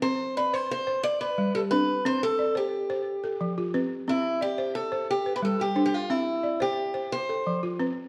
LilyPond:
<<
  \new Staff \with { instrumentName = "Balafon" } { \time 12/8 \key c \major \tempo 4. = 119 << { b'8 r8 d''4. r4 b'4 g'8 c'4~ | c'8 r8 d''4. r4 a'4 f'8 b'4~ | b'8 r8 d''4. r4 b'4 g'8 c''4~ | c''8 r8 d''4. r4 a'4 f'8 b'4 | } \\ { c'4 r8 c''4 c''8 r4 g4 d'4 | c'4 r8 c''4 c''8 r4 f4 c'4 | c'4 r8 c''4 c''8 r4 g4 d'4 | c'4 r8 c''4 c''8 r4 f4 c'4 | } >> }
  \new Staff \with { instrumentName = "Steel-string acoustic guitar" } { \time 12/8 \key c \major c''4 b'8 c''8 c''4 d''8 b'4 a'8 b'4 | c''8 a'4 g'2. r4. | e'4 g'4 a'4 g'8. b'16 a'8 g'8. g'16 f'8 | e'4. g'4. c''4. r4. | }
>>